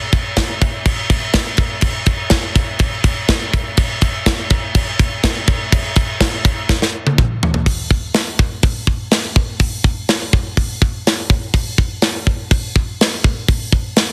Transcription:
0.13 kick, crash
0.36 kick, snare, crash
0.62 kick, crash
0.86 kick, crash
1.10 kick, crash
1.33 kick, snare, crash
1.57 kick, crash
1.81 kick, crash
2.06 kick, crash
2.30 kick, snare, crash
2.56 kick, crash
2.79 kick, crash
3.04 kick, crash
3.28 kick, snare, crash
3.53 kick, crash
3.77 kick, crash
4.01 kick, crash
4.26 kick, snare, crash
4.50 kick, crash
4.75 kick, crash
4.99 kick, crash
5.23 kick, snare, crash
5.47 kick, crash
5.72 kick, crash
5.96 kick, crash
6.20 kick, snare, crash
6.45 kick, crash
6.69 kick, snare
6.82 snare
7.07 high tom
7.18 kick, mid tom
7.43 floor tom
7.54 floor tom
7.66 kick, open hi-hat
7.91 kick
8.14 snare, open hi-hat
8.39 kick
8.63 kick, open hi-hat
8.87 kick
9.11 snare, open hi-hat
9.36 kick
9.60 kick, open hi-hat
9.84 kick
10.09 snare, open hi-hat
10.33 kick
10.57 kick, open hi-hat
10.82 kick
11.07 snare, open hi-hat
11.30 kick
11.54 kick, open hi-hat
11.78 kick
12.02 snare, open hi-hat
12.27 kick
12.51 kick, open hi-hat
12.76 kick
13.01 snare, open hi-hat
13.24 kick
13.48 kick, open hi-hat
13.72 kick
13.96 snare, open hi-hat

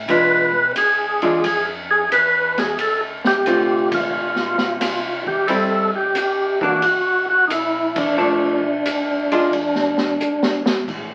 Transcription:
0.08 B2 E3 G#3 D4 F4 B4, ride
0.76 D2 G#4, hi-hat pedal, ride
1.22 E3 G#3 D4 F4, ride
1.44 F2 G#4, ride
1.91 G#4
2.11 E2 B4, hi-hat pedal, ride
2.58 G#4, snare, ride
2.79 D2 A4, ride
3.24 G4, snare
3.46 C2 D3 A3 C4 F4, hi-hat pedal, ride
3.92 F4, kick, ride
4.13 B1
4.36 snare
4.58 snare
4.80 C2, snare, hi-hat pedal, ride
5.26 C2 G4, kick
5.47 A1 G3 C4 E4 A4, ride
5.96 G4
6.15 G1 G4, hi-hat pedal, ride
6.61 E3 A#3 D4 F#4, kick
6.82 F#1 F#4, ride
7.30 F#4
7.47 A#1 D#4, hi-hat pedal, ride
7.52 E4
7.96 D4, kick, ride
8.17 B1 F3 A3 D4
8.85 D2, hi-hat pedal, ride
9.31 G#3 D4 F4, ride
9.52 E2, ride
9.75 snare
9.98 snare
10.19 G#2, hi-hat pedal
10.43 snare
10.66 snare
10.88 A2, kick, crash

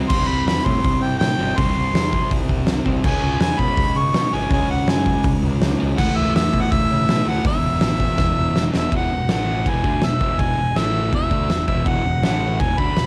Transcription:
Already playing: G3 C4
0.09 C2 C3 G3 C6, kick, crash
0.13 C4
0.27 C2 B5
0.46 E2 B5, snare, open hi-hat
0.65 A2 C6, kick
0.84 C2, kick, open hi-hat
1.01 C3 G5
1.19 A2 G5, snare, open hi-hat
1.39 G1 C3 G3 C4
1.57 C2 C3 G3 C6, kick, open hi-hat
1.61 C4
1.75 C2
1.94 E2, snare, open hi-hat
2.13 kick
2.31 C2, kick, open hi-hat
2.49 C2, kick
2.66 C2, snare, open hi-hat
2.86 C2 C3 G3 C4, kick
3.04 C#2 C#3 G#3 G#5, kick, crash
3.09 C#4
3.23 C#2
3.40 E2 G#5, snare, open hi-hat
3.59 B2 B5, kick
3.77 C#2, kick, open hi-hat
3.96 C#3 C#6
4.14 B2, snare, open hi-hat
4.33 G#1 C#3 G#3 C#4 G#5
4.50 C#2 C#3 G#3 G#5, kick, open hi-hat
4.54 C#4
4.69 C#2 F#5
4.88 F#2 G#5, snare, open hi-hat
5.06 kick
5.24 C#2, kick, open hi-hat
5.43 C#2
5.61 C#2, snare, open hi-hat
5.79 C#2 G#3 C#4
5.83 C#3
5.98 C#2 A2 E3 A3 F#5, kick, crash
6.16 C#2 E5
6.35 E2 E5, snare, open hi-hat
6.53 B2, kick
6.61 F#5
6.71 C#2 E5, kick, open hi-hat
6.91 C#3
7.09 B2, snare, open hi-hat
7.25 D2 E3 A3 F#5
7.29 A2
7.44 E1 E2 B2 E5, kick, open hi-hat
7.48 E3
7.64 E1
7.81 A1, snare, open hi-hat
8.00 kick
8.18 E1, kick, snare
8.39 E1
8.56 E1, snare
8.73 E1 B2 E3, snare
8.77 E2 E5
8.92 E1 E2 B2 E3, kick, crash
8.96 F#5
9.10 E1 E2 B2
9.29 A1 A2 E3 A3 F#5, snare, crash
9.66 E1 E2 B2 E3 G#5, kick, crash
9.84 D2 D3 A3 D4, kick
10.01 E1 E2 B2 E5, snare, crash
10.20 E1 E2 B2 E3, kick
10.39 E1 E2 B2 E3 G#5, kick, crash
10.57 E1 E2 B2
10.75 A1 A2 E3 A3 E5, snare, crash
11.12 E1 E2 B2 E3 E5, kick, crash
11.30 D2 D3 A3 D4, kick
11.50 E1 E2 B2, snare, crash
11.67 E1 E2 B2 E3 E5, kick
11.85 E1 E2 B2 E3 F#5, kick, crash
12.04 E1 E2 B2
12.23 A1 A2 E3 A3 F#5, snare, crash
12.60 E1 E2 B2 E3 G#5, kick, crash
12.77 D2 D3 A3 D4 B5, kick
12.96 E1 E2 B2, snare, crash

